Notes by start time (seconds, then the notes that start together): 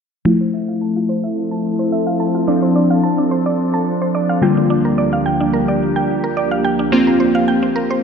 0.25 F3 A3 C4 E4 F4 A4
0.41 C5
0.54 E5
0.68 F5
0.81 A5
0.96 F4
1.09 C5
1.24 E5
1.51 A5
1.79 C5
1.92 E5
2.07 F5
2.20 A5
2.35 F4
2.47 F3 C4 D4
2.62 C5
2.76 D5
2.90 F5
3.03 A5
3.18 D4
3.31 C5
3.46 D5
3.74 A5
4.02 C5
4.15 D5
4.29 F5
4.42 D2 D3 G3 A#3 F4 G4 G5
4.57 D4
4.70 D4
4.85 A#4
4.98 D5
5.13 F5
5.26 G5
5.40 D4
5.53 A#4
5.68 D5
5.96 G5
6.24 A#4
6.37 D5
6.51 F5
6.65 G5
6.79 D4
6.92 A#3 C4 F4
7.07 A#4
7.20 C5
7.35 F5
7.48 G5
7.63 C4
7.76 A#4
7.91 C5